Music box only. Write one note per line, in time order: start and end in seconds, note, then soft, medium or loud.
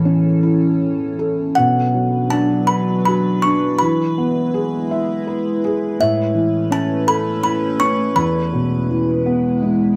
0.00 0.38 A5 medium
1.55 2.33 F#5 medium
2.30 2.69 A5 medium
2.67 3.04 B5 medium
3.05 3.44 B5 medium
3.42 3.80 C#6 medium
3.79 5.22 B5 medium
6.01 6.74 E5 medium
6.72 7.09 A5 medium
7.08 7.41 B5 medium
7.43 7.81 B5 medium
7.80 8.17 C#6 medium
8.16 9.59 B5 medium